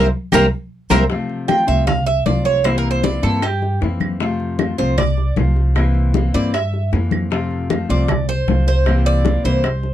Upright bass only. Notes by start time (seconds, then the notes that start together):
0.33 C2
0.90 C2
1.68 C2
2.26 C2
3.23 G2
3.82 F2
4.79 C2
5.37 C2
6.34 G2
6.93 F2
7.89 C2
8.48 C2
9.44 C2